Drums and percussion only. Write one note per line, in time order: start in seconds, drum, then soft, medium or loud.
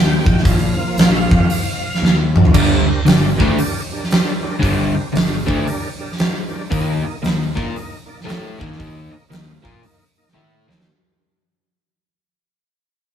0.26 kick loud
0.38 snare soft
0.45 kick loud
0.45 open hi-hat medium
0.98 snare loud
0.98 open hi-hat medium
1.31 kick loud
1.50 open hi-hat medium
1.95 snare soft
2.05 snare medium
2.36 mid tom loud
2.45 floor tom loud
2.54 kick loud
2.54 crash loud
3.06 snare loud
3.06 open hi-hat medium
3.40 kick loud
3.58 open hi-hat medium
4.04 snare soft
4.11 snare loud
4.11 open hi-hat medium
4.63 kick loud
4.63 open hi-hat medium
5.15 snare loud
5.15 open hi-hat medium
5.48 kick loud
5.67 open hi-hat medium
6.12 snare soft
6.18 snare loud
6.18 open hi-hat medium
6.72 kick loud
6.72 open hi-hat medium
7.24 snare loud
7.24 open hi-hat medium
7.57 kick loud
7.76 open hi-hat medium
8.21 snare soft
8.29 snare loud
8.29 open hi-hat medium
8.61 kick loud
8.72 snare soft
8.80 kick loud
8.80 open hi-hat medium
9.32 snare loud
9.32 open hi-hat medium
9.65 kick loud
9.83 open hi-hat medium
10.28 snare soft
10.36 high tom medium
10.71 snare loud
10.80 snare loud